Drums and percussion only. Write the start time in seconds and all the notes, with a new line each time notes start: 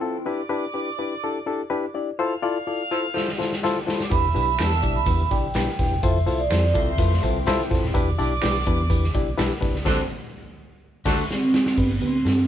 3.17 snare
3.28 snare
3.40 snare
3.52 snare
3.64 snare
3.88 snare
4.00 snare
4.12 kick, closed hi-hat
4.36 closed hi-hat
4.59 finger snap, snare, closed hi-hat
4.82 kick, closed hi-hat
5.06 kick, closed hi-hat
5.31 kick, closed hi-hat
5.54 finger snap, snare, closed hi-hat
5.79 kick, snare, closed hi-hat
6.03 kick, closed hi-hat
6.27 closed hi-hat
6.51 finger snap, snare, closed hi-hat
6.74 kick, closed hi-hat
6.98 kick, closed hi-hat
7.13 snare
7.23 kick, closed hi-hat
7.46 finger snap, snare, closed hi-hat
7.71 kick, snare, closed hi-hat
7.84 snare
7.95 kick, closed hi-hat
8.19 closed hi-hat
8.42 finger snap, snare, closed hi-hat
8.66 kick, closed hi-hat
8.90 kick, closed hi-hat
9.04 snare
9.15 kick, closed hi-hat
9.38 finger snap, snare, closed hi-hat
9.62 kick, snare, open hi-hat
9.75 snare
9.86 kick, snare, crash
11.06 kick, snare, crash
11.31 snare
11.54 snare
11.66 snare
11.77 kick, crash
11.90 closed hi-hat
12.02 closed hi-hat
12.26 snare, closed hi-hat